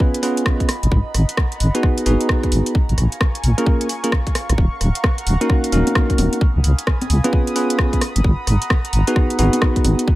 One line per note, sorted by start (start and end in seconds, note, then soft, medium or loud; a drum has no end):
0.00 0.21 B3 medium
0.00 0.21 C#4 medium
0.00 0.21 F4 medium
0.00 0.21 G#4 medium
0.00 0.21 B4 loud
0.00 2.71 D#5 medium
0.00 0.65 F5 medium
0.00 0.67 G#5 medium
0.00 2.71 B5 loud
0.00 kick loud
0.14 closed hi-hat medium
0.23 0.68 B3 medium
0.23 0.68 C#4 medium
0.23 0.68 F4 medium
0.23 0.68 G#4 medium
0.23 0.68 B4 loud
0.23 open hi-hat loud
0.37 closed hi-hat medium
0.46 kick loud
0.46 cross-stick loud
0.60 kick medium
0.60 closed hi-hat soft
0.69 2.73 F#5 medium
0.69 4.54 A#5 medium
0.69 cross-stick medium
0.69 open hi-hat loud
0.83 0.89 G#1 loud
0.83 closed hi-hat medium
0.92 1.02 G#1 loud
0.92 kick loud
1.14 1.25 G#1 loud
1.14 cross-stick soft
1.14 open hi-hat loud
1.29 closed hi-hat medium
1.37 kick loud
1.37 cross-stick loud
1.52 closed hi-hat soft
1.60 1.71 G#1 medium
1.60 open hi-hat loud
1.75 2.04 B3 medium
1.75 2.04 D#4 medium
1.75 2.04 F#4 medium
1.75 2.04 G#4 medium
1.75 2.04 B4 loud
1.75 closed hi-hat medium
1.83 kick loud
1.83 cross-stick medium
1.98 closed hi-hat medium
2.06 2.17 G#1 loud
2.06 2.74 B3 medium
2.06 2.74 D#4 medium
2.06 2.74 F#4 medium
2.06 2.74 G#4 medium
2.06 2.74 B4 medium
2.06 open hi-hat loud
2.21 closed hi-hat medium
2.29 kick loud
2.29 cross-stick loud
2.43 kick medium
2.43 closed hi-hat soft
2.52 2.62 G#1 medium
2.52 open hi-hat loud
2.66 closed hi-hat medium
2.75 7.98 F5 medium
2.75 4.56 G#5 medium
2.75 6.38 C#6 loud
2.75 kick loud
2.89 2.95 A#1 medium
2.89 closed hi-hat soft
2.98 3.08 A#1 loud
2.98 cross-stick soft
2.98 open hi-hat loud
3.12 closed hi-hat medium
3.21 kick loud
3.21 cross-stick loud
3.35 closed hi-hat medium
3.44 3.54 A#1 medium
3.44 open hi-hat loud
3.58 3.87 A#3 loud
3.58 3.87 C#4 medium
3.58 3.87 F4 medium
3.58 3.87 G#4 medium
3.58 3.87 A#4 loud
3.58 closed hi-hat medium
3.66 kick loud
3.81 closed hi-hat medium
3.89 open hi-hat loud
4.04 4.12 A#3 medium
4.04 4.12 C#4 medium
4.04 4.12 F4 medium
4.04 4.12 G#4 medium
4.04 4.12 A#4 loud
4.04 closed hi-hat medium
4.12 kick loud
4.12 cross-stick loud
4.27 kick medium
4.27 closed hi-hat soft
4.35 cross-stick medium
4.35 open hi-hat loud
4.50 4.56 A#1 loud
4.50 cross-stick medium
4.50 closed hi-hat medium
4.58 4.69 D#1 loud
4.58 6.39 F#5 medium
4.58 6.39 A#5 medium
4.58 kick loud
4.81 4.91 D#1 loud
4.81 cross-stick soft
4.81 open hi-hat loud
4.95 closed hi-hat medium
5.04 kick loud
5.04 cross-stick loud
5.18 closed hi-hat soft
5.26 5.37 D#1 medium
5.26 open hi-hat loud
5.41 5.70 A#3 medium
5.41 5.70 C#4 medium
5.41 5.70 D#4 medium
5.41 5.70 F#4 medium
5.41 5.70 A#4 loud
5.41 closed hi-hat medium
5.50 kick loud
5.50 cross-stick soft
5.64 closed hi-hat medium
5.72 5.83 D#1 loud
5.72 6.40 A#3 medium
5.72 6.40 C#4 medium
5.72 6.40 D#4 medium
5.72 6.40 F#4 medium
5.72 6.40 A#4 loud
5.72 open hi-hat loud
5.87 closed hi-hat medium
5.87 high conga medium
5.95 kick loud
5.95 cross-stick loud
6.10 kick medium
6.10 closed hi-hat soft
6.18 6.29 D#1 medium
6.18 open hi-hat loud
6.18 high conga medium
6.33 closed hi-hat medium
6.41 8.00 G#5 medium
6.41 10.04 B5 medium
6.41 10.04 D#6 medium
6.41 kick loud
6.56 6.62 C#2 medium
6.64 6.75 C#2 loud
6.64 open hi-hat loud
6.79 closed hi-hat medium
6.87 kick loud
6.87 cross-stick loud
7.01 closed hi-hat medium
7.01 high conga medium
7.10 7.20 C#2 loud
7.10 open hi-hat loud
7.24 7.54 B3 loud
7.24 7.54 C#4 medium
7.24 7.54 F4 medium
7.24 7.54 G#4 medium
7.24 7.54 B4 loud
7.24 closed hi-hat medium
7.24 high conga medium
7.33 kick loud
7.47 closed hi-hat medium
7.56 8.00 B3 medium
7.56 8.00 C#4 medium
7.56 8.00 F4 medium
7.56 8.00 G#4 medium
7.56 8.00 B4 loud
7.56 open hi-hat loud
7.70 closed hi-hat medium
7.79 kick loud
7.79 cross-stick loud
7.93 kick medium
7.93 closed hi-hat soft
8.01 10.06 F#5 medium
8.01 10.06 A#5 medium
8.01 cross-stick medium
8.01 open hi-hat loud
8.16 8.22 G#1 loud
8.16 closed hi-hat medium
8.24 8.35 G#1 loud
8.24 kick loud
8.47 8.58 G#1 loud
8.47 cross-stick soft
8.47 open hi-hat loud
8.62 closed hi-hat medium
8.70 kick loud
8.70 cross-stick loud
8.85 closed hi-hat medium
8.93 9.04 G#1 loud
8.93 open hi-hat loud
9.07 9.37 B3 loud
9.07 9.37 D#4 medium
9.07 9.37 F#4 medium
9.07 9.37 G#4 medium
9.07 9.37 B4 loud
9.07 closed hi-hat medium
9.16 kick loud
9.16 cross-stick medium
9.30 closed hi-hat medium
9.39 9.49 G#1 loud
9.39 10.07 B3 medium
9.39 10.07 D#4 medium
9.39 10.07 F#4 medium
9.39 10.07 G#4 medium
9.39 10.07 B4 loud
9.39 open hi-hat loud
9.53 closed hi-hat medium
9.53 high conga medium
9.62 kick loud
9.62 cross-stick loud
9.76 kick medium
9.76 closed hi-hat soft
9.85 9.95 G#1 medium
9.85 open hi-hat loud
9.85 high conga medium
9.99 closed hi-hat medium
10.08 10.15 F5 medium
10.08 10.15 G#5 medium
10.08 10.15 A#5 medium
10.08 10.15 C#6 loud
10.08 kick loud